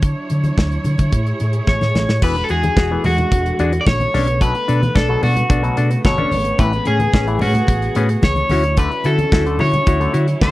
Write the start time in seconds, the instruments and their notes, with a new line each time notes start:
Already playing: fingered electric bass D3, string section F#3 D4 E4 C#5
0.02 kick, closed hi-hat, muted conga
0.30 fingered electric bass D3, closed hi-hat, muted conga
0.44 closed hi-hat, high conga
0.58 fingered electric bass D2, kick, snare
0.72 closed hi-hat
0.84 fingered electric bass D3, closed hi-hat, muted conga, low conga
0.98 fingered electric bass D3, kick, closed hi-hat, low conga
1.12 fingered electric bass A2, string section A3 G#4, kick, closed hi-hat, muted conga
1.26 closed hi-hat
1.40 fingered electric bass A2, closed hi-hat, muted conga
1.53 closed hi-hat
1.67 fingered electric bass A1, clean electric guitar C#5, kick, snare, muted conga, high conga
1.81 fingered electric bass A2, snare, high conga
1.95 fingered electric bass A1, snare, muted conga, high conga, low conga
2.09 fingered electric bass A2, snare
2.22 fingered electric bass E1, string section D3 E3 G#3 F#4, clav E3 B3, clean electric guitar B4, kick, crash
2.36 closed hi-hat
2.44 clean electric guitar A4
2.49 fingered electric bass E2, clav F#4 G#4, clean electric guitar G#4, closed hi-hat
2.63 closed hi-hat, high conga
2.77 fingered electric bass E1, clav F#4 G#4, kick, snare, muted conga
2.91 clav E3 B3
3.04 fingered electric bass E2, clav F#4 G#4, clean electric guitar F#4, open hi-hat, low conga
3.18 closed hi-hat, low conga
3.32 fingered electric bass E1, kick, closed hi-hat, muted conga
3.46 closed hi-hat
3.59 fingered electric bass E2, clav D4 F#4 G#4, closed hi-hat, muted conga
3.73 closed hi-hat
3.81 clean electric guitar D5
3.87 fingered electric bass A#1, clean electric guitar C#5, kick, snare, high conga
4.00 closed hi-hat, high conga
4.13 fingered electric bass B1, string section C#3 A3 B3, clav C#4 D4 A4, snare, open hi-hat, muted conga, high conga, low conga
4.27 closed hi-hat
4.41 clav B2 F#3, clean electric guitar B4, kick, closed hi-hat, muted conga
4.55 closed hi-hat
4.68 fingered electric bass B2, clav D4 A4, closed hi-hat, muted conga
4.83 closed hi-hat, high conga
4.95 fingered electric bass B1, clav D4 A4, clean electric guitar A4, kick, snare, muted conga
5.09 clav B2 F#3
5.22 fingered electric bass B2, clav D4 A4, clean electric guitar F#4, open hi-hat, muted conga, low conga
5.36 closed hi-hat, low conga
5.50 fingered electric bass B1, clav D4 A4, kick, closed hi-hat, muted conga
5.63 clav B2 F#3, closed hi-hat
5.77 fingered electric bass B2, clav D4 A4, closed hi-hat
5.91 closed hi-hat
6.05 fingered electric bass G1, clav B2 F#3, clean electric guitar C#5, kick, snare, high conga
6.18 clav C#4 D4 A4, high conga
6.32 fingered electric bass G#1, clav D4 A4, open hi-hat, high conga, low conga
6.45 closed hi-hat
6.59 fingered electric bass A1, clav A2 E3, string section G#4, clean electric guitar B4, kick, closed hi-hat, muted conga
6.73 closed hi-hat
6.85 fingered electric bass A2, clav C#4 G#4, clean electric guitar G#4, closed hi-hat, muted conga
7.00 closed hi-hat, high conga
7.13 fingered electric bass A1, clav C#4 G#4, kick, snare, muted conga
7.27 clav A2 E3, closed hi-hat
7.39 fingered electric bass A2, clav C#4 G#4, clean electric guitar F#4, open hi-hat, muted conga, low conga
7.53 closed hi-hat, low conga
7.67 fingered electric bass A1, kick, closed hi-hat, muted conga
7.82 closed hi-hat
7.95 fingered electric bass A2, clav B3 C#4 G#4, closed hi-hat, muted conga
8.09 closed hi-hat
8.22 fingered electric bass C#2, clean electric guitar C#5, kick, snare, high conga
8.36 closed hi-hat, high conga
8.50 fingered electric bass D2, string section D3 F#3 C#4 E4, clav C#4 E4 F#4, snare, open hi-hat, muted conga, high conga, low conga
8.64 closed hi-hat
8.77 clav D3 A3, clean electric guitar B4, kick, closed hi-hat
8.92 closed hi-hat
9.04 fingered electric bass D3, clav E4 F#4, clean electric guitar A4, closed hi-hat, muted conga
9.18 closed hi-hat, high conga
9.32 fingered electric bass D2, clav E4 F#4, kick, snare
9.46 clav D3 A3, closed hi-hat
9.59 fingered electric bass D3, clav E4 F#4, clean electric guitar C#5, open hi-hat, muted conga, low conga
9.73 closed hi-hat, low conga
9.86 fingered electric bass D2, clav E4 F#4, kick, closed hi-hat, muted conga
10.00 clav D3 A3, closed hi-hat
10.13 fingered electric bass D3, clav E4 F#4, closed hi-hat, muted conga
10.28 closed hi-hat
10.41 fingered electric bass D2, clav D3 A3, clean electric guitar C#5, kick, snare, muted conga, high conga